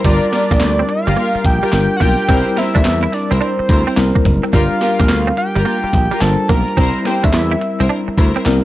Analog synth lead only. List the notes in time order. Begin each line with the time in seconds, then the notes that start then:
0.05 D5
0.89 F5
1.45 G5
1.97 F#5
2.01 G5
2.58 E5
3.14 D5
3.32 C5
4.54 F5
5.38 G5
6.21 A5
6.50 A#5
7.06 G5
7.24 E5